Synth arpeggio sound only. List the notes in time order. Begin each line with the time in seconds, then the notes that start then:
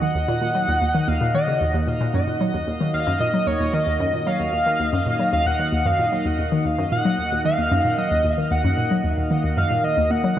0.02 D#3
0.15 D#2
0.28 A#2
0.42 A#2
0.55 F#3
0.68 D#2
0.81 D#2
0.95 D#3
1.08 D#2
1.21 A#2
1.34 D#3
1.48 C#3
1.61 D#2
1.74 D#2
1.87 A#2
2.01 A#2
2.14 F#2
2.27 A#2
2.41 F#3
2.54 D#2
2.67 D#2
2.81 D#3
2.94 D#2
3.07 F#2
3.20 A#2
3.34 F#3
3.47 D#2
3.60 D#2
3.73 D#3
3.87 D#2
4.00 F#2
4.13 A#2
4.26 F#3
4.40 D#2
4.53 D#2
4.66 D#3
4.80 D#2
4.93 F#2
5.06 A#2
5.19 F#3
5.33 D#2
5.46 D#2
5.59 D#3
5.72 D#2
5.86 F#2
5.99 A#2
6.12 F#3
6.25 D#2
6.39 D#2
6.52 D#3
6.65 D#2
6.79 F#2
6.92 A#2
7.05 F#3
7.18 D#2
7.32 D#2
7.45 D#3
7.58 D#2
7.71 F#2
7.85 A#2
7.98 F#3
8.11 D#2
8.24 D#2
8.38 D#3
8.51 D#2
8.64 F#2
8.78 A#2
8.91 F#3
9.04 D#2
9.17 D#2
9.31 D#3
9.44 D#2
9.57 F#2
9.71 A#2
9.84 D#3
9.97 D#2
10.11 A#3
10.24 F#3